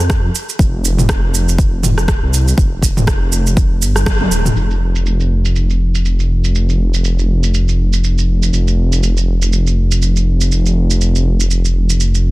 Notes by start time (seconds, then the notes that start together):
0.00 F2
0.10 kick, cross-stick, shaker
0.35 shaker
0.49 shaker
0.59 F1, kick, shaker
0.85 shaker
0.99 mid tom, shaker
1.09 kick, cross-stick, shaker
1.35 shaker
1.49 shaker
1.58 kick, shaker
1.83 mid tom, shaker
1.98 cross-stick, shaker
2.08 kick, cross-stick, shaker
2.22 C2
2.34 shaker
2.48 shaker
2.58 F1, kick, shaker
2.83 kick, shaker
2.97 F1, mid tom, shaker
3.07 kick, cross-stick, shaker
3.33 shaker
3.47 shaker
3.57 kick, shaker
3.82 G1, shaker
3.96 cross-stick, shaker
4.06 kick, cross-stick, high tom, shaker
4.21 high tom
4.31 D#1, shaker
4.46 mid tom, shaker
4.56 F1, shaker
4.71 shaker
4.95 shaker
5.06 shaker
5.20 shaker
5.45 shaker
5.56 shaker
5.70 shaker
5.95 shaker
6.05 shaker
6.20 shaker
6.44 shaker
6.55 shaker
6.69 shaker
6.94 shaker
7.05 shaker
7.19 shaker
7.44 shaker
7.54 shaker
7.68 shaker
7.93 shaker
8.04 shaker
8.18 shaker
8.43 shaker
8.53 F1, shaker
8.68 shaker
8.93 shaker
9.03 shaker
9.17 shaker
9.42 shaker
9.53 shaker
9.67 shaker
9.92 shaker
10.02 shaker
10.16 shaker
10.41 shaker
10.52 shaker
10.66 shaker
10.91 shaker
11.01 shaker
11.16 shaker
11.40 shaker
11.51 shaker
11.65 shaker
11.90 shaker
12.00 shaker
12.15 shaker